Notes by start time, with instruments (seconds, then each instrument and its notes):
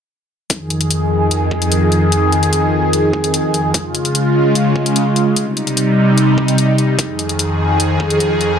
0.50 supersaw synth F2 D#3 G#4, kick, closed hi-hat
0.70 closed hi-hat
0.81 closed hi-hat
0.91 closed hi-hat
1.31 closed hi-hat
1.51 kick
1.62 closed hi-hat
1.72 closed hi-hat
1.92 closed hi-hat
2.12 closed hi-hat
2.32 closed hi-hat
2.43 closed hi-hat
2.53 closed hi-hat
2.93 closed hi-hat
3.13 kick
3.24 closed hi-hat
3.34 closed hi-hat
3.54 closed hi-hat
3.74 supersaw synth C#3 G#3 F4, kick, closed hi-hat
3.95 closed hi-hat
4.05 closed hi-hat
4.15 closed hi-hat
4.55 closed hi-hat
4.76 kick
4.86 closed hi-hat
4.96 closed hi-hat
5.16 closed hi-hat
5.36 supersaw synth C3 G3 D#4, closed hi-hat
5.57 closed hi-hat
5.67 closed hi-hat
5.77 closed hi-hat
6.18 closed hi-hat
6.38 kick
6.48 closed hi-hat
6.58 closed hi-hat
6.78 closed hi-hat
6.99 supersaw synth F2 D#3 G#4, kick, closed hi-hat
7.19 closed hi-hat
7.29 closed hi-hat
7.39 closed hi-hat
7.80 closed hi-hat
8.00 kick
8.10 closed hi-hat
8.20 closed hi-hat
8.41 closed hi-hat